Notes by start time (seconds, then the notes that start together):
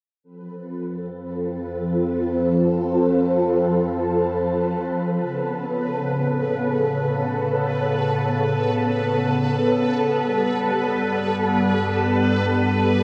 0.23 F2 F3 C4 A4 B4
5.18 A2 C#3 B3 A4
10.13 G2 G3